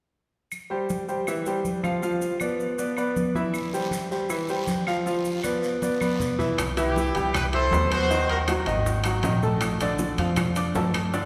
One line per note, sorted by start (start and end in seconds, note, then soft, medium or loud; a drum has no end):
0.52 high conga soft
0.52 claves medium
0.52 maracas medium
0.70 1.01 G3 medium
0.70 1.02 G4 medium
0.70 1.02 C5 medium
0.70 high conga soft
0.89 high conga medium
0.89 maracas medium
1.08 1.24 G3 medium
1.08 1.24 G4 medium
1.08 1.24 C5 medium
1.08 high conga soft
1.08 maracas soft
1.27 1.43 E3 medium
1.27 1.43 E4 medium
1.27 1.43 E5 medium
1.27 high conga soft
1.27 claves medium
1.27 maracas medium
1.46 1.77 G3 medium
1.46 1.78 G4 medium
1.46 1.78 C5 medium
1.46 high conga soft
1.46 maracas medium
1.65 high conga medium
1.65 maracas medium
1.83 1.99 F3 medium
1.83 1.99 F4 medium
1.83 2.00 F5 medium
1.83 high conga medium
1.83 claves medium
1.83 maracas soft
2.02 2.34 F3 medium
2.02 2.34 F4 medium
2.02 2.34 F5 medium
2.02 maracas medium
2.22 high conga soft
2.22 maracas medium
2.40 2.72 B3 medium
2.40 2.72 B4 medium
2.40 2.72 D5 medium
2.40 high conga soft
2.40 claves medium
2.40 maracas medium
2.60 high conga soft
2.60 maracas soft
2.78 2.94 B3 medium
2.78 2.94 B4 medium
2.78 2.94 D5 medium
2.78 high conga soft
2.78 maracas medium
2.97 3.29 B3 medium
2.97 3.29 B4 medium
2.97 3.29 D5 medium
2.97 high conga soft
2.97 claves medium
2.97 maracas medium
3.16 high conga medium
3.16 maracas medium
3.35 3.67 E3 medium
3.35 3.67 E4 medium
3.35 3.67 E5 medium
3.35 high conga medium
3.35 maracas soft
3.54 high conga soft
3.54 long guiro medium
3.54 claves medium
3.54 maracas medium
3.73 4.05 G3 medium
3.73 4.05 G4 medium
3.73 4.05 C5 medium
3.73 high conga soft
3.73 maracas medium
3.91 high conga medium
3.91 short guiro medium
3.91 maracas medium
4.11 4.27 G3 medium
4.11 4.27 G4 medium
4.11 4.27 C5 medium
4.11 high conga soft
4.11 short guiro medium
4.11 maracas soft
4.29 4.45 E3 medium
4.29 4.46 E4 medium
4.29 4.46 E5 medium
4.29 high conga soft
4.29 long guiro medium
4.29 claves medium
4.29 maracas medium
4.48 4.81 G3 medium
4.48 4.81 G4 medium
4.48 4.81 C5 medium
4.48 high conga soft
4.48 maracas medium
4.67 high conga medium
4.67 short guiro medium
4.67 maracas medium
4.87 5.03 F3 medium
4.87 5.03 F4 medium
4.87 5.03 F5 medium
4.87 short guiro medium
4.87 claves medium
4.87 maracas soft
5.06 5.37 F3 medium
5.06 5.38 F4 medium
5.06 5.38 F5 medium
5.06 high conga soft
5.06 long guiro medium
5.06 maracas medium
5.25 high conga soft
5.25 maracas medium
5.43 5.75 B3 medium
5.43 5.75 B4 medium
5.43 5.75 D5 medium
5.43 high conga medium
5.43 short guiro medium
5.43 claves medium
5.43 maracas medium
5.63 high conga soft
5.63 short guiro medium
5.63 maracas soft
5.82 5.98 B3 medium
5.82 5.98 B4 medium
5.82 5.98 D5 medium
5.82 high conga medium
5.82 long guiro medium
5.82 maracas medium
6.01 6.32 B3 medium
6.01 6.32 B4 medium
6.01 6.33 D5 medium
6.01 high conga medium
6.01 claves medium
6.01 maracas medium
6.20 low conga medium
6.20 short guiro medium
6.20 maracas medium
6.39 6.55 E3 medium
6.39 6.54 E4 medium
6.39 6.55 E5 medium
6.39 low conga medium
6.39 short guiro medium
6.39 maracas soft
6.58 7.11 C2 medium
6.58 high bongo medium
6.58 high conga soft
6.58 high timbale medium
6.58 claves medium
6.58 maracas medium
6.77 7.08 E3 medium
6.77 7.08 E4 medium
6.77 7.31 E4 medium
6.77 7.31 G4 loud
6.77 7.08 E5 medium
6.77 high conga soft
6.77 high timbale medium
6.77 maracas medium
6.96 high bongo medium
6.96 high conga medium
6.96 maracas medium
7.15 7.68 C2 medium
7.15 7.46 G3 medium
7.15 7.47 G4 medium
7.15 7.47 G5 medium
7.15 high conga soft
7.15 high timbale medium
7.15 maracas soft
7.34 7.44 G4 medium
7.34 7.44 B4 medium
7.34 high bongo medium
7.34 high conga soft
7.34 low conga medium
7.34 high timbale medium
7.34 claves medium
7.34 maracas medium
7.53 7.69 E4 medium
7.53 7.89 A4 medium
7.53 7.89 C5 loud
7.53 7.69 E5 medium
7.53 7.69 E6 medium
7.53 high conga soft
7.53 high timbale medium
7.71 8.61 D#2 medium
7.71 8.03 B3 medium
7.71 8.03 B4 medium
7.71 8.04 B5 medium
7.71 high bongo medium
7.71 low bongo medium
7.71 high conga medium
7.71 low timbale medium
7.71 maracas medium
7.90 8.27 F#4 medium
7.90 8.26 C5 loud
7.90 high conga medium
7.90 high timbale medium
7.90 claves medium
7.90 maracas soft
8.09 8.41 D#3 medium
8.09 8.41 D#4 medium
8.09 8.41 D#5 medium
8.09 high bongo medium
8.09 high conga soft
8.09 maracas medium
8.28 8.38 F#4 medium
8.28 8.38 A#4 medium
8.28 high conga soft
8.28 high timbale medium
8.48 8.64 F#3 medium
8.48 9.20 D#4 medium
8.48 9.20 F#4 medium
8.48 8.64 F#4 medium
8.48 8.64 F#5 medium
8.48 high bongo medium
8.48 high conga medium
8.48 high timbale medium
8.48 claves medium
8.48 maracas medium
8.66 9.20 G#1 medium
8.66 8.98 D#3 medium
8.66 8.98 D#4 medium
8.66 8.98 D#5 medium
8.66 high bongo soft
8.66 high conga soft
8.66 high timbale medium
8.66 maracas soft
8.86 high bongo medium
8.86 high conga soft
8.86 maracas medium
9.04 9.21 F#3 medium
9.04 9.21 F#4 medium
9.04 9.21 F#5 medium
9.04 high bongo soft
9.04 high conga soft
9.04 high timbale medium
9.04 claves medium
9.04 maracas soft
9.23 10.12 A#1 medium
9.23 9.39 D#3 medium
9.23 9.40 D#4 medium
9.23 9.40 D#5 medium
9.23 high bongo medium
9.23 low bongo medium
9.23 high conga medium
9.23 high timbale medium
9.23 maracas medium
9.42 9.74 A3 medium
9.42 9.74 A4 medium
9.42 9.74 A5 medium
9.42 high bongo soft
9.42 high conga medium
9.42 maracas soft
9.61 high bongo medium
9.61 high timbale medium
9.61 claves medium
9.61 maracas medium
9.80 10.12 D3 medium
9.80 10.12 D4 medium
9.80 10.13 D5 medium
9.80 high conga soft
9.80 high timbale medium
9.80 maracas medium
9.99 high bongo medium
9.99 high conga medium
9.99 maracas medium
10.18 10.71 F2 medium
10.18 10.49 F3 medium
10.18 10.50 F4 medium
10.18 10.50 F5 medium
10.18 high conga soft
10.18 high timbale medium
10.18 maracas soft
10.36 high bongo medium
10.36 high conga soft
10.36 low conga medium
10.36 high timbale medium
10.36 claves medium
10.36 maracas medium
10.56 10.72 D4 medium
10.56 10.72 D5 medium
10.56 10.72 D6 medium
10.56 high conga soft
10.56 high timbale medium
10.56 maracas medium
10.75 11.25 G2 medium
10.75 11.06 A3 medium
10.75 11.06 A4 medium
10.75 11.06 A5 medium
10.75 high bongo medium
10.75 low bongo medium
10.75 high conga medium
10.75 low timbale medium
10.75 maracas medium
10.93 high conga medium
10.93 high timbale medium
10.93 claves medium
10.93 maracas soft
11.13 11.25 D3 medium
11.13 11.25 D4 medium
11.13 11.25 D5 medium
11.13 high bongo medium
11.13 high conga soft
11.13 maracas medium